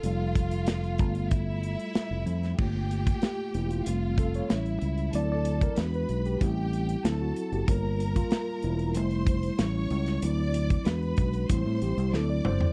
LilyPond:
<<
  \new Staff \with { instrumentName = "String section" } { \time 4/4 \key g \dorian \tempo 4 = 94 <f' f''>2 <e' e''>2 | <g' g''>2 <f' f''>4 <e' e''>4 | <a' a''>4 <b' b''>4 <g' g''>4 <a' a''>4 | <bes' bes''>2 <c'' c'''>4 <cis'' cis'''>4 |
<d'' d'''>4 <b' b''>4 <c'' c'''>4 <d'' d'''>4 | }
  \new Staff \with { instrumentName = "Tine electric piano" } { \time 4/4 \key g \dorian << { a'2. r4 | r4 g'8 e'16 f'8. a'16 cis''8 r8. | d''16 d''8 bes'16 b'16 b'8 g'4~ g'16 a'16 fis'8 g'16 | bes'8. f'8. e'2~ e'8 |
r2 r8 g'8 a'16 d''16 c''8 | } \\ { <g a f'>8 r4 <g a f'>8 r2 | <a bes f'>2 <g a c'>4 <g cis' e'>4 | <fis c' e'>8 r8 <gis d' fis'>4 <g c' e'>8 r8 <fis c' e'>4 | <g bes f'>8 r4. <g a e'>8 r8 <g cis' e'>4 |
<fis c' e'>8 r8 <gis d' fis'>4 <g c' e'>4 <fis c' e'>4 | } >> }
  \new Staff \with { instrumentName = "Fingered electric bass" } { \clef bass \time 4/4 \key g \dorian f,,4. g,,4~ g,,16 r8 f,,16 f,8 | g,,4 r8 e,,8 f,,4 a,,8 cis,8 | d,4 e,8 b,,8 a,,4 d,8 r16 fis,,16 | g,,4 r8 e,,8 f,,4 a,,8 cis,8 |
d,4 e,8 b,,8 a,,16 a,16 a,,16 c,16 d,8 fis,,16 r16 | }
  \new DrumStaff \with { instrumentName = "Drums" } \drummode { \time 4/4 hh8 <hh bd>16 hh16 <hh sn>16 hh16 <hh bd>16 hh16 <hh bd>8 hh16 hh16 <hh sn>8 hh16 <hh sn>16 | <cymc bd>8 hh16 <hh bd>16 <hh sn>8 hh16 hh16 hh8 <hh bd>16 hh16 <hh sn>16 hh16 hh16 hh16 | hh8 hh16 <hh bd>16 <hh sn>16 hh16 hh16 hh16 <hh bd>8 hh16 hh16 <hh sn>8 hh16 hh16 | <hh bd>8 hh16 <hh bd>16 <hh sn>8 hh16 hh16 hh16 hh16 <hh bd>16 hh16 <hh sn>8 hh16 <hh sn>16 |
hh8 hh16 <hh bd>16 <hh sn>16 hh16 <hh bd>16 hh16 <hh bd>8 hh16 hh16 sn8 toml16 tomfh16 | }
>>